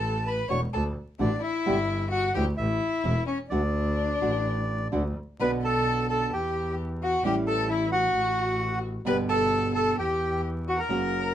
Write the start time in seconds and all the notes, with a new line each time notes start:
Already playing: A1 A4 A5
0.26 B4 B5
0.48 E1 D3 A3 D4 F#4 C#5 C#6
0.73 D2 A4 A5
1.19 A1 D3 A3 D4 F#4 D5
1.42 E4 E5
1.66 G1 B2 D3 G3 B3 G4
2.11 F#4 F#5
2.34 D2 E3 A3 C#4 E4 G4 G5
2.57 A1 E4 E5
3.04 E1 E3 A3 C#4 E4
3.27 C#4 C#5
3.50 D2 D3 A3 D4 F#4 D5
4.21 A1 D3 A3 D4 F#4
4.92 D2 D3 A3 D4 F#4
5.39 B1 B2 D3 B3 D4 F#4 B4 B5
5.63 A4 A5
6.10 A4 A5
6.32 E2 G4 G5
7.02 F#4 F#5
7.23 A1 E3 G3 C#4 E4 G4 G5
7.47 A4 A5
7.70 E4 E5
7.92 F#4 F#5
8.14 A1
9.05 G1 B2 D3 G3 B3 G4 B4 B5
9.29 A4 A5
9.75 A4 A5
9.98 E2 G4 G5
10.68 F#4 F#5
10.79 A#4 A#5
10.89 F#1 C#3 F#3 A#3 C#4 F#4